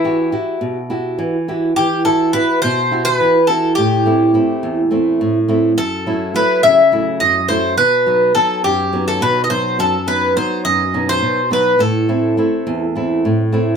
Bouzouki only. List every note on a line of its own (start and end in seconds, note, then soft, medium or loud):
0.00 1.15 E4 medium
1.76 2.03 G4 medium
2.05 2.32 A4 medium
2.33 2.61 B4 loud
2.62 3.04 C5 loud
3.05 3.45 B4 loud
3.47 3.74 A4 medium
3.75 4.87 G4 medium
5.78 6.37 A4 loud
6.36 6.63 B4 medium
6.63 7.20 E5 loud
7.20 7.47 D#5 loud
7.49 7.77 C5 loud
7.78 8.31 B4 loud
8.35 8.62 A4 medium
8.64 9.04 G4 medium
9.08 9.22 A4 medium
9.22 9.42 B4 medium
9.44 9.50 D#5 medium
9.50 9.77 C5 loud
9.80 10.06 A4 medium
10.08 10.35 B4 medium
10.37 10.64 C5 medium
10.65 11.05 D#5 medium
11.09 11.49 C5 loud
11.53 11.79 B4 medium
11.80 12.91 A4 medium